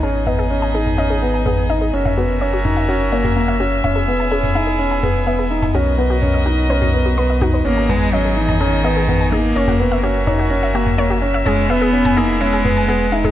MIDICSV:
0, 0, Header, 1, 7, 480
1, 0, Start_track
1, 0, Key_signature, 5, "minor"
1, 0, Tempo, 476190
1, 30, Time_signature, 4, 2, 24, 8
1, 13416, End_track
2, 0, Start_track
2, 0, Title_t, "Synth arpeggio sound"
2, 0, Program_c, 0, 84
2, 32, Note_on_c, 0, 68, 72
2, 132, Note_off_c, 0, 68, 0
2, 271, Note_on_c, 0, 75, 68
2, 338, Note_off_c, 0, 75, 0
2, 392, Note_on_c, 0, 68, 76
2, 458, Note_off_c, 0, 68, 0
2, 628, Note_on_c, 0, 80, 63
2, 696, Note_off_c, 0, 80, 0
2, 753, Note_on_c, 0, 68, 65
2, 852, Note_off_c, 0, 68, 0
2, 990, Note_on_c, 0, 75, 74
2, 1057, Note_off_c, 0, 75, 0
2, 1111, Note_on_c, 0, 68, 65
2, 1178, Note_off_c, 0, 68, 0
2, 1353, Note_on_c, 0, 80, 68
2, 1419, Note_off_c, 0, 80, 0
2, 1470, Note_on_c, 0, 68, 79
2, 1571, Note_off_c, 0, 68, 0
2, 1710, Note_on_c, 0, 75, 69
2, 1777, Note_off_c, 0, 75, 0
2, 1828, Note_on_c, 0, 68, 67
2, 1896, Note_off_c, 0, 68, 0
2, 2071, Note_on_c, 0, 76, 69
2, 2138, Note_off_c, 0, 76, 0
2, 2191, Note_on_c, 0, 66, 64
2, 2291, Note_off_c, 0, 66, 0
2, 2431, Note_on_c, 0, 73, 75
2, 2498, Note_off_c, 0, 73, 0
2, 2553, Note_on_c, 0, 66, 69
2, 2619, Note_off_c, 0, 66, 0
2, 2789, Note_on_c, 0, 76, 59
2, 2857, Note_off_c, 0, 76, 0
2, 2909, Note_on_c, 0, 66, 76
2, 3010, Note_off_c, 0, 66, 0
2, 3150, Note_on_c, 0, 73, 72
2, 3217, Note_off_c, 0, 73, 0
2, 3269, Note_on_c, 0, 66, 68
2, 3337, Note_off_c, 0, 66, 0
2, 3510, Note_on_c, 0, 76, 69
2, 3577, Note_off_c, 0, 76, 0
2, 3629, Note_on_c, 0, 66, 68
2, 3730, Note_off_c, 0, 66, 0
2, 3871, Note_on_c, 0, 76, 72
2, 3938, Note_off_c, 0, 76, 0
2, 3988, Note_on_c, 0, 68, 71
2, 4056, Note_off_c, 0, 68, 0
2, 4232, Note_on_c, 0, 80, 70
2, 4298, Note_off_c, 0, 80, 0
2, 4350, Note_on_c, 0, 68, 77
2, 4451, Note_off_c, 0, 68, 0
2, 4589, Note_on_c, 0, 76, 71
2, 4657, Note_off_c, 0, 76, 0
2, 4708, Note_on_c, 0, 68, 62
2, 4776, Note_off_c, 0, 68, 0
2, 4953, Note_on_c, 0, 80, 71
2, 5019, Note_off_c, 0, 80, 0
2, 5070, Note_on_c, 0, 68, 69
2, 5171, Note_off_c, 0, 68, 0
2, 5312, Note_on_c, 0, 76, 77
2, 5378, Note_off_c, 0, 76, 0
2, 5433, Note_on_c, 0, 68, 66
2, 5499, Note_off_c, 0, 68, 0
2, 5672, Note_on_c, 0, 80, 69
2, 5738, Note_off_c, 0, 80, 0
2, 5792, Note_on_c, 0, 66, 77
2, 5892, Note_off_c, 0, 66, 0
2, 6032, Note_on_c, 0, 71, 65
2, 6098, Note_off_c, 0, 71, 0
2, 6151, Note_on_c, 0, 66, 72
2, 6218, Note_off_c, 0, 66, 0
2, 6392, Note_on_c, 0, 75, 68
2, 6458, Note_off_c, 0, 75, 0
2, 6510, Note_on_c, 0, 66, 70
2, 6611, Note_off_c, 0, 66, 0
2, 6753, Note_on_c, 0, 71, 77
2, 6819, Note_off_c, 0, 71, 0
2, 6870, Note_on_c, 0, 66, 67
2, 6937, Note_off_c, 0, 66, 0
2, 7113, Note_on_c, 0, 66, 67
2, 7212, Note_off_c, 0, 66, 0
2, 7235, Note_on_c, 0, 83, 75
2, 7300, Note_off_c, 0, 83, 0
2, 7356, Note_on_c, 0, 75, 67
2, 7454, Note_off_c, 0, 75, 0
2, 7476, Note_on_c, 0, 66, 93
2, 7540, Note_off_c, 0, 66, 0
2, 7600, Note_on_c, 0, 71, 67
2, 7662, Note_off_c, 0, 71, 0
2, 7835, Note_on_c, 0, 80, 70
2, 7900, Note_off_c, 0, 80, 0
2, 7958, Note_on_c, 0, 68, 68
2, 8055, Note_off_c, 0, 68, 0
2, 8197, Note_on_c, 0, 75, 77
2, 8261, Note_off_c, 0, 75, 0
2, 8317, Note_on_c, 0, 68, 68
2, 8381, Note_off_c, 0, 68, 0
2, 8555, Note_on_c, 0, 80, 65
2, 8620, Note_off_c, 0, 80, 0
2, 8675, Note_on_c, 0, 68, 77
2, 8773, Note_off_c, 0, 68, 0
2, 8915, Note_on_c, 0, 75, 68
2, 8980, Note_off_c, 0, 75, 0
2, 9037, Note_on_c, 0, 68, 63
2, 9101, Note_off_c, 0, 68, 0
2, 9277, Note_on_c, 0, 80, 71
2, 9341, Note_off_c, 0, 80, 0
2, 9396, Note_on_c, 0, 68, 70
2, 9494, Note_off_c, 0, 68, 0
2, 9638, Note_on_c, 0, 73, 76
2, 9701, Note_off_c, 0, 73, 0
2, 9756, Note_on_c, 0, 66, 75
2, 9820, Note_off_c, 0, 66, 0
2, 9996, Note_on_c, 0, 76, 76
2, 10060, Note_off_c, 0, 76, 0
2, 10113, Note_on_c, 0, 66, 75
2, 10212, Note_off_c, 0, 66, 0
2, 10354, Note_on_c, 0, 73, 71
2, 10419, Note_off_c, 0, 73, 0
2, 10475, Note_on_c, 0, 66, 66
2, 10540, Note_off_c, 0, 66, 0
2, 10715, Note_on_c, 0, 76, 70
2, 10780, Note_off_c, 0, 76, 0
2, 10834, Note_on_c, 0, 66, 73
2, 10933, Note_off_c, 0, 66, 0
2, 11071, Note_on_c, 0, 73, 84
2, 11138, Note_off_c, 0, 73, 0
2, 11192, Note_on_c, 0, 66, 70
2, 11258, Note_off_c, 0, 66, 0
2, 11433, Note_on_c, 0, 76, 68
2, 11499, Note_off_c, 0, 76, 0
2, 11555, Note_on_c, 0, 68, 73
2, 11653, Note_off_c, 0, 68, 0
2, 11792, Note_on_c, 0, 76, 70
2, 11858, Note_off_c, 0, 76, 0
2, 11910, Note_on_c, 0, 68, 70
2, 11977, Note_off_c, 0, 68, 0
2, 12149, Note_on_c, 0, 80, 70
2, 12217, Note_off_c, 0, 80, 0
2, 12270, Note_on_c, 0, 68, 74
2, 12371, Note_off_c, 0, 68, 0
2, 12508, Note_on_c, 0, 76, 80
2, 12576, Note_off_c, 0, 76, 0
2, 12631, Note_on_c, 0, 68, 67
2, 12698, Note_off_c, 0, 68, 0
2, 12871, Note_on_c, 0, 80, 70
2, 12938, Note_off_c, 0, 80, 0
2, 12988, Note_on_c, 0, 68, 76
2, 13089, Note_off_c, 0, 68, 0
2, 13227, Note_on_c, 0, 76, 68
2, 13296, Note_off_c, 0, 76, 0
2, 13350, Note_on_c, 0, 68, 70
2, 13416, Note_off_c, 0, 68, 0
2, 13416, End_track
3, 0, Start_track
3, 0, Title_t, "String quartet"
3, 0, Program_c, 1, 48
3, 31, Note_on_c, 1, 59, 60
3, 31, Note_on_c, 1, 63, 56
3, 32, Note_on_c, 1, 68, 53
3, 32, Note_on_c, 1, 75, 67
3, 1932, Note_off_c, 1, 59, 0
3, 1932, Note_off_c, 1, 63, 0
3, 1932, Note_off_c, 1, 68, 0
3, 1932, Note_off_c, 1, 75, 0
3, 1945, Note_on_c, 1, 61, 62
3, 1945, Note_on_c, 1, 66, 55
3, 1945, Note_on_c, 1, 70, 58
3, 1946, Note_on_c, 1, 76, 67
3, 3848, Note_off_c, 1, 61, 0
3, 3848, Note_off_c, 1, 70, 0
3, 3849, Note_off_c, 1, 66, 0
3, 3867, Note_on_c, 1, 68, 60
3, 3868, Note_on_c, 1, 59, 63
3, 3869, Note_on_c, 1, 64, 57
3, 5750, Note_off_c, 1, 76, 0
3, 5770, Note_off_c, 1, 68, 0
3, 5771, Note_off_c, 1, 64, 0
3, 5788, Note_on_c, 1, 75, 70
3, 5789, Note_on_c, 1, 66, 60
3, 5790, Note_on_c, 1, 70, 57
3, 7690, Note_off_c, 1, 75, 0
3, 7691, Note_off_c, 1, 66, 0
3, 7691, Note_off_c, 1, 70, 0
3, 7711, Note_on_c, 1, 63, 61
3, 7711, Note_on_c, 1, 75, 71
3, 7712, Note_on_c, 1, 68, 58
3, 9589, Note_off_c, 1, 59, 0
3, 9612, Note_off_c, 1, 63, 0
3, 9612, Note_off_c, 1, 68, 0
3, 9612, Note_off_c, 1, 75, 0
3, 9629, Note_on_c, 1, 70, 56
3, 9630, Note_on_c, 1, 66, 60
3, 9631, Note_on_c, 1, 61, 60
3, 9631, Note_on_c, 1, 76, 71
3, 11530, Note_off_c, 1, 70, 0
3, 11531, Note_off_c, 1, 61, 0
3, 11531, Note_off_c, 1, 66, 0
3, 11546, Note_on_c, 1, 64, 63
3, 11547, Note_on_c, 1, 59, 68
3, 11547, Note_on_c, 1, 68, 62
3, 13416, Note_off_c, 1, 59, 0
3, 13416, Note_off_c, 1, 64, 0
3, 13416, Note_off_c, 1, 68, 0
3, 13416, Note_off_c, 1, 76, 0
3, 13416, End_track
4, 0, Start_track
4, 0, Title_t, "Felt piano"
4, 0, Program_c, 2, 0
4, 31, Note_on_c, 2, 61, 71
4, 212, Note_off_c, 2, 61, 0
4, 270, Note_on_c, 2, 59, 59
4, 451, Note_off_c, 2, 59, 0
4, 509, Note_on_c, 2, 61, 65
4, 690, Note_off_c, 2, 61, 0
4, 749, Note_on_c, 2, 63, 64
4, 931, Note_off_c, 2, 63, 0
4, 989, Note_on_c, 2, 61, 67
4, 1171, Note_off_c, 2, 61, 0
4, 1233, Note_on_c, 2, 59, 63
4, 1413, Note_off_c, 2, 59, 0
4, 1473, Note_on_c, 2, 59, 64
4, 1653, Note_off_c, 2, 59, 0
4, 1712, Note_on_c, 2, 63, 69
4, 1893, Note_off_c, 2, 63, 0
4, 1951, Note_on_c, 2, 61, 74
4, 2132, Note_off_c, 2, 61, 0
4, 2190, Note_on_c, 2, 59, 62
4, 2371, Note_off_c, 2, 59, 0
4, 2431, Note_on_c, 2, 61, 64
4, 2612, Note_off_c, 2, 61, 0
4, 2668, Note_on_c, 2, 63, 62
4, 2850, Note_off_c, 2, 63, 0
4, 2909, Note_on_c, 2, 61, 70
4, 3091, Note_off_c, 2, 61, 0
4, 3148, Note_on_c, 2, 58, 61
4, 3330, Note_off_c, 2, 58, 0
4, 3389, Note_on_c, 2, 58, 70
4, 3571, Note_off_c, 2, 58, 0
4, 3630, Note_on_c, 2, 61, 69
4, 3811, Note_off_c, 2, 61, 0
4, 3870, Note_on_c, 2, 61, 71
4, 4051, Note_off_c, 2, 61, 0
4, 4111, Note_on_c, 2, 59, 61
4, 4292, Note_off_c, 2, 59, 0
4, 4350, Note_on_c, 2, 61, 67
4, 4532, Note_off_c, 2, 61, 0
4, 4588, Note_on_c, 2, 63, 65
4, 4770, Note_off_c, 2, 63, 0
4, 4828, Note_on_c, 2, 61, 69
4, 5010, Note_off_c, 2, 61, 0
4, 5068, Note_on_c, 2, 59, 58
4, 5250, Note_off_c, 2, 59, 0
4, 5308, Note_on_c, 2, 59, 64
4, 5490, Note_off_c, 2, 59, 0
4, 5550, Note_on_c, 2, 63, 65
4, 5732, Note_off_c, 2, 63, 0
4, 5792, Note_on_c, 2, 61, 75
4, 5973, Note_off_c, 2, 61, 0
4, 6028, Note_on_c, 2, 59, 60
4, 6210, Note_off_c, 2, 59, 0
4, 6271, Note_on_c, 2, 61, 66
4, 6452, Note_off_c, 2, 61, 0
4, 6511, Note_on_c, 2, 63, 68
4, 6692, Note_off_c, 2, 63, 0
4, 6750, Note_on_c, 2, 61, 72
4, 6931, Note_off_c, 2, 61, 0
4, 6990, Note_on_c, 2, 59, 59
4, 7171, Note_off_c, 2, 59, 0
4, 7231, Note_on_c, 2, 59, 68
4, 7412, Note_off_c, 2, 59, 0
4, 7471, Note_on_c, 2, 63, 67
4, 7652, Note_off_c, 2, 63, 0
4, 7710, Note_on_c, 2, 61, 73
4, 7891, Note_off_c, 2, 61, 0
4, 7952, Note_on_c, 2, 59, 63
4, 8133, Note_off_c, 2, 59, 0
4, 8194, Note_on_c, 2, 61, 65
4, 8374, Note_off_c, 2, 61, 0
4, 8434, Note_on_c, 2, 63, 63
4, 8614, Note_off_c, 2, 63, 0
4, 8676, Note_on_c, 2, 61, 73
4, 8855, Note_off_c, 2, 61, 0
4, 8913, Note_on_c, 2, 59, 60
4, 9093, Note_off_c, 2, 59, 0
4, 9157, Note_on_c, 2, 59, 67
4, 9336, Note_off_c, 2, 59, 0
4, 9396, Note_on_c, 2, 63, 67
4, 9575, Note_off_c, 2, 63, 0
4, 9635, Note_on_c, 2, 61, 72
4, 9814, Note_off_c, 2, 61, 0
4, 9873, Note_on_c, 2, 59, 68
4, 10053, Note_off_c, 2, 59, 0
4, 10112, Note_on_c, 2, 61, 64
4, 10292, Note_off_c, 2, 61, 0
4, 10351, Note_on_c, 2, 63, 65
4, 10532, Note_off_c, 2, 63, 0
4, 10588, Note_on_c, 2, 61, 74
4, 10770, Note_off_c, 2, 61, 0
4, 10830, Note_on_c, 2, 58, 63
4, 11011, Note_off_c, 2, 58, 0
4, 11068, Note_on_c, 2, 58, 71
4, 11250, Note_off_c, 2, 58, 0
4, 11307, Note_on_c, 2, 61, 71
4, 11490, Note_off_c, 2, 61, 0
4, 11545, Note_on_c, 2, 61, 81
4, 11728, Note_off_c, 2, 61, 0
4, 11787, Note_on_c, 2, 59, 65
4, 11970, Note_off_c, 2, 59, 0
4, 12025, Note_on_c, 2, 61, 67
4, 12208, Note_off_c, 2, 61, 0
4, 12266, Note_on_c, 2, 63, 64
4, 12449, Note_off_c, 2, 63, 0
4, 12506, Note_on_c, 2, 61, 72
4, 12689, Note_off_c, 2, 61, 0
4, 12747, Note_on_c, 2, 59, 67
4, 12930, Note_off_c, 2, 59, 0
4, 12985, Note_on_c, 2, 59, 77
4, 13168, Note_off_c, 2, 59, 0
4, 13227, Note_on_c, 2, 63, 73
4, 13409, Note_off_c, 2, 63, 0
4, 13416, End_track
5, 0, Start_track
5, 0, Title_t, "Cello"
5, 0, Program_c, 3, 42
5, 7716, Note_on_c, 3, 58, 85
5, 7958, Note_on_c, 3, 56, 88
5, 7973, Note_off_c, 3, 58, 0
5, 8195, Note_on_c, 3, 54, 75
5, 8210, Note_off_c, 3, 56, 0
5, 8437, Note_on_c, 3, 52, 73
5, 8452, Note_off_c, 3, 54, 0
5, 8670, Note_off_c, 3, 52, 0
5, 8676, Note_on_c, 3, 51, 80
5, 9397, Note_on_c, 3, 58, 80
5, 9413, Note_off_c, 3, 51, 0
5, 10114, Note_off_c, 3, 58, 0
5, 11549, Note_on_c, 3, 56, 88
5, 11787, Note_on_c, 3, 59, 97
5, 11802, Note_off_c, 3, 56, 0
5, 12264, Note_on_c, 3, 58, 88
5, 12279, Note_off_c, 3, 59, 0
5, 12506, Note_on_c, 3, 56, 90
5, 12521, Note_off_c, 3, 58, 0
5, 13416, Note_off_c, 3, 56, 0
5, 13416, End_track
6, 0, Start_track
6, 0, Title_t, "Sub bass"
6, 0, Program_c, 4, 38
6, 30, Note_on_c, 4, 32, 77
6, 1926, Note_off_c, 4, 32, 0
6, 1949, Note_on_c, 4, 30, 78
6, 3846, Note_off_c, 4, 30, 0
6, 3868, Note_on_c, 4, 28, 75
6, 5766, Note_off_c, 4, 28, 0
6, 5788, Note_on_c, 4, 35, 74
6, 7685, Note_off_c, 4, 35, 0
6, 7711, Note_on_c, 4, 32, 71
6, 9607, Note_off_c, 4, 32, 0
6, 9629, Note_on_c, 4, 30, 78
6, 11526, Note_off_c, 4, 30, 0
6, 11547, Note_on_c, 4, 28, 79
6, 13416, Note_off_c, 4, 28, 0
6, 13416, End_track
7, 0, Start_track
7, 0, Title_t, "Drums"
7, 266, Note_on_c, 9, 45, 51
7, 367, Note_off_c, 9, 45, 0
7, 869, Note_on_c, 9, 45, 48
7, 970, Note_off_c, 9, 45, 0
7, 1469, Note_on_c, 9, 45, 53
7, 1570, Note_off_c, 9, 45, 0
7, 2069, Note_on_c, 9, 45, 49
7, 2170, Note_off_c, 9, 45, 0
7, 2669, Note_on_c, 9, 45, 55
7, 2770, Note_off_c, 9, 45, 0
7, 3269, Note_on_c, 9, 45, 51
7, 3370, Note_off_c, 9, 45, 0
7, 3869, Note_on_c, 9, 45, 50
7, 3969, Note_off_c, 9, 45, 0
7, 4468, Note_on_c, 9, 45, 46
7, 4569, Note_off_c, 9, 45, 0
7, 5069, Note_on_c, 9, 45, 52
7, 5170, Note_off_c, 9, 45, 0
7, 5668, Note_on_c, 9, 45, 49
7, 5769, Note_off_c, 9, 45, 0
7, 6269, Note_on_c, 9, 45, 48
7, 6370, Note_off_c, 9, 45, 0
7, 6872, Note_on_c, 9, 45, 49
7, 6973, Note_off_c, 9, 45, 0
7, 7473, Note_on_c, 9, 45, 53
7, 7573, Note_off_c, 9, 45, 0
7, 7953, Note_on_c, 9, 45, 52
7, 8054, Note_off_c, 9, 45, 0
7, 8553, Note_on_c, 9, 45, 48
7, 8654, Note_off_c, 9, 45, 0
7, 9152, Note_on_c, 9, 45, 53
7, 9253, Note_off_c, 9, 45, 0
7, 9751, Note_on_c, 9, 45, 54
7, 9852, Note_off_c, 9, 45, 0
7, 10351, Note_on_c, 9, 45, 54
7, 10452, Note_off_c, 9, 45, 0
7, 10950, Note_on_c, 9, 45, 55
7, 11051, Note_off_c, 9, 45, 0
7, 11549, Note_on_c, 9, 45, 54
7, 11650, Note_off_c, 9, 45, 0
7, 12148, Note_on_c, 9, 45, 54
7, 12249, Note_off_c, 9, 45, 0
7, 12749, Note_on_c, 9, 45, 55
7, 12850, Note_off_c, 9, 45, 0
7, 13348, Note_on_c, 9, 45, 53
7, 13416, Note_off_c, 9, 45, 0
7, 13416, End_track
0, 0, End_of_file